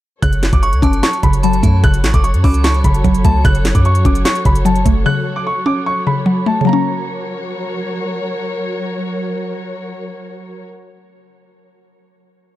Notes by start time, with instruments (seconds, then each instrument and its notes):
0.22 808-style bass F#1, synth pluck C#3, string section F#3 F#4 A4 C#5, grand piano F#6, kick, closed hi-hat
0.33 closed hi-hat
0.43 snare, clap, closed hi-hat
0.53 808-style bass F#1, grand piano D6, kick, closed hi-hat
0.63 synth bell C#6, grand piano C#6, closed hi-hat
0.73 808-style bass C#2, closed hi-hat
0.82 808-style bass F#1, synth pluck C#4, synth bell A5, grand piano D6, kick, closed hi-hat
0.93 closed hi-hat
1.03 grand piano C#6, snare, clap, closed hi-hat
1.13 closed hi-hat
1.23 808-style bass F#1, synth pluck C#3, grand piano B5, kick, closed hi-hat
1.33 closed hi-hat
1.43 synth pluck F#3, grand piano A5, synth bell B5, closed hi-hat
1.53 closed hi-hat
1.63 808-style bass F#2, synth pluck A3, synth bell A5, kick, closed hi-hat
1.83 808-style bass F#1, synth pluck C#3, grand piano F#6, kick, closed hi-hat
1.94 closed hi-hat
2.04 808-style bass A1, synth bell C#6, snare, clap, closed hi-hat
2.14 808-style bass F#1, grand piano D6, kick, closed hi-hat
2.24 grand piano C#6, closed hi-hat
2.34 808-style bass F#2, closed hi-hat
2.44 808-style bass C#2, synth pluck C#4, synth bell B5, grand piano D6, kick, closed hi-hat, open hi-hat
2.54 closed hi-hat
2.64 synth bell A5, grand piano C#6, snare, clap, closed hi-hat
2.74 closed hi-hat
2.84 808-style bass F#1, synth pluck C#3, grand piano B5, kick, closed hi-hat
2.94 closed hi-hat
3.04 808-style bass F#1, synth pluck F#3, kick, closed hi-hat
3.15 closed hi-hat
3.25 808-style bass C#2, synth pluck A3, grand piano A5, synth bell B5, kick, closed hi-hat
3.44 808-style bass F#1, synth pluck C#3, grand piano F#6, kick, closed hi-hat
3.55 closed hi-hat
3.65 snare, clap, closed hi-hat
3.75 808-style bass F#2, grand piano D6, kick, closed hi-hat
3.85 grand piano C#6, closed hi-hat
3.95 closed hi-hat
4.05 808-style bass F#1, synth pluck C#4, grand piano D6, kick, closed hi-hat
4.15 closed hi-hat
4.25 grand piano C#6, snare, clap, closed hi-hat
4.35 closed hi-hat
4.45 808-style bass F#1, synth pluck C#3, grand piano B5, kick, closed hi-hat
4.55 closed hi-hat
4.65 synth pluck F#3, grand piano A5, closed hi-hat
4.76 closed hi-hat
4.86 808-style bass F#1, synth pluck A3, kick, closed hi-hat
5.06 synth pluck C#3, grand piano F#6
5.36 grand piano D6
5.47 grand piano C#6
5.66 synth pluck C#4, grand piano D6
5.86 grand piano C#6
6.07 synth pluck C#3, grand piano B5
6.26 synth pluck F#3
6.46 synth pluck A3, grand piano A5
6.61 synth pluck C#3
6.65 synth pluck F#3, string section F#3 F#4 A#4 C#5, grand piano A#5
6.69 synth pluck A#3
6.73 synth pluck C#4